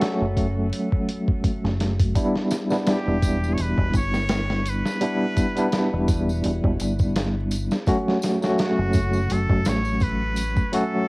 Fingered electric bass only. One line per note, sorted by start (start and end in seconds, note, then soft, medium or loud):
0.22 0.70 F#1 loud
1.64 2.13 F#1 medium
3.08 3.56 E1 loud
3.59 3.76 E1 medium
3.78 3.92 E1 loud
3.94 4.81 G1 medium
5.93 6.42 E1 loud
6.45 6.62 E1 medium
6.64 6.78 E1 loud
6.81 7.68 G1 medium
8.79 9.27 F#1 loud
9.31 9.48 F#1 medium
9.50 9.64 F#1 loud
9.67 10.54 A1 medium